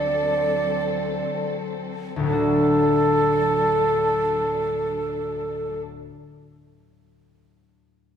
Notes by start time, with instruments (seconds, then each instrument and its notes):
Already playing: harp D2 A3 D4 F#4, string section F#3 C4 A4, flute D5
2.16 harp D2 A2
2.23 harp F#3 A3, string section F#3 D4 A4, flute A4
2.30 harp D4 F#4